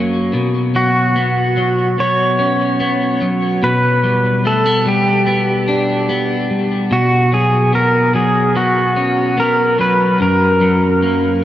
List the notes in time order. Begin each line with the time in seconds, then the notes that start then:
Already playing: F#2 F#3 A#3 C#4
0.33 B2
0.75 F#3 F#4
1.16 B3
1.57 F#3
1.98 B3 C#5
2.39 C#4
2.80 B3
3.21 F#3
3.62 B2 B4
4.04 G3
4.45 A3 A4
4.65 B3
4.85 G3 G4
5.26 B3
5.68 D4
6.09 B3
6.50 G3
6.91 B2 F#4
7.32 F#3 G#4
7.73 B3 A#4
8.14 F#3 G#4
8.55 B3 F#4
8.96 C#4
9.37 B3 A#4
9.79 F#3 B4
10.20 F#2 A#4
10.61 F#3
11.02 A#3